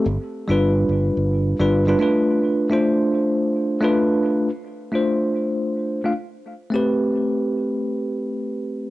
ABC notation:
X:1
M:4/4
L:1/16
Q:"Swing 16ths" 1/4=108
K:Am
V:1 name="Tine electric piano"
z3 [G,DFB]8 [G,DFB]2 [G,DFB] [A,DFB]2- | [A,DFB]3 [A,DFc]8 [A,DFB]4- [A,DFB] | z3 [A,DFc]8 [A,DFf] z4 | [A,CGB]16 |]
V:2 name="Fingered electric bass" clef=bass
G,,, z2 G,,,3 G,,, z G,,,3 G,,,3 z2 | z16 | z16 | z16 |]